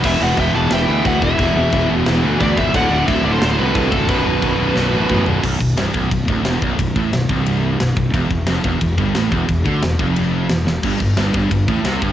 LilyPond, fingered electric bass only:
\new Staff \with { instrumentName = "Fingered electric bass" } { \clef bass \time 4/4 \key b \phrygian \tempo 4 = 178 e,,8 e,,8 e,,8 e,,8 e,,8 d,8 d,8 e,,8 | e,,8 e,,8 e,,8 e,,8 e,,8 d,8 d,8 cis,,8 | d,,8 d,,8 d,,8 d,,8 d,,8 c,8 c,8 c,,8 | b,,,8 b,,,8 b,,,8 b,,,8 b,,,8 a,,8 a,,8 b,,,8 |
b,,,8 b,,,8 c,,8 b,,,8 b,,,8 d,,8 e,,8 b,,,8 | b,,,8 a,,8 b,,,8 c,,4. b,,,8 b,,,8 | e,,8 e,,8 f,,8 e,,8 e,,8 g,,8 a,,8 e,,8 | e,,8 d,8 e,,8 f,,4. e,,8 e,,8 |
g,,8 g,,8 g,,8 g,,8 g,,8 a,,8 c,8 g,,8 | }